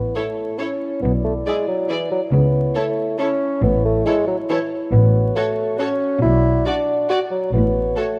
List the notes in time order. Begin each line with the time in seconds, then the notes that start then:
Already playing: B3 E4 C#5
0.15 A3 E4 A4 C#5
0.58 C#4 E4 A4 C#5
1.02 B1 B2 B3 D5
1.24 A3
1.46 G#3 E4 G#4 D5
1.68 F#3
1.89 E3 E4 G#4 D5
2.11 F#3
2.32 C#2 C#3 B3 E4 C#5
2.75 A3 E4 A4 C#5
3.19 C#4 E4 A4 C#5
3.62 A1 A2 B3
3.85 A3
4.06 G#3 E4 A4 C#5
4.27 F#3
4.50 E3 E4 A4 C#5
4.92 A1 A2 B3 F#4 C#5
5.36 A3 F#4 A4 C#5
5.78 C#4 F#4 A4 C#5
6.21 B1 B2 E4 D5
6.65 D4 F#4 D5
7.09 F#4 D5
7.31 F#3
7.52 A1 A2 B3 F#4 C#5
7.96 A3 F#4 A4 C#5